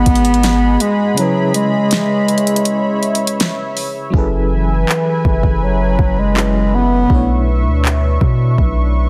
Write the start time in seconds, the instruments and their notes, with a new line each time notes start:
Already playing: fm electric piano G#2 G#3 D#4 F#4 B4, bass clarinet B3, analog synth pad G#4 D#5 F#5 B5
0.06 808-style bass G#1, kick, closed hi-hat
0.15 closed hi-hat
0.25 closed hi-hat
0.34 closed hi-hat
0.43 snare, closed hi-hat
0.80 bass clarinet G#3, closed hi-hat
1.14 fm electric piano C#3 C#4, analog synth pad C#5 E5, closed hi-hat
1.18 bass clarinet F#3, fm electric piano E4 G#4 B4
1.54 bass clarinet G#3, closed hi-hat
1.91 snare, closed hi-hat
2.28 closed hi-hat
2.38 closed hi-hat
2.47 closed hi-hat
2.56 closed hi-hat
2.65 closed hi-hat
3.03 closed hi-hat
3.15 closed hi-hat
3.27 closed hi-hat
3.40 snare, closed hi-hat
3.77 open hi-hat
4.10 808-style bass F#1, fm electric piano F#3 C#4 E4, analog synth pad B4 E5 G#5 B5, kick
4.15 fm electric piano G#4 A4 B4
4.52 bass clarinet E3
4.89 clap
5.25 808-style bass F#1, kick
5.43 808-style bass F#1, kick
5.64 bass clarinet F#3
5.99 808-style bass F#1, kick
6.19 bass clarinet G#3
6.34 fm electric piano F#3 C#4 E4 G#4 B4, clap
6.39 fm electric piano C#5
6.75 bass clarinet B3
7.06 808-style bass B1, fm electric piano B2 A3 D4, analog synth pad D4 E5 C#6, kick
7.12 fm electric piano E4 C#5
7.66 808-style bass D2
7.85 clap
8.21 808-style bass B2, kick
8.58 808-style bass B1, kick